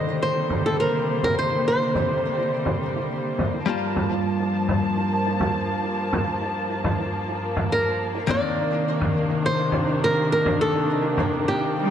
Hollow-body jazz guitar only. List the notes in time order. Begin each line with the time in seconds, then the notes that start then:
Already playing: D3 D#3 C4 A#4
3.66 G3 A#3 F4 A5
8.27 D#3 A#3 C4 D4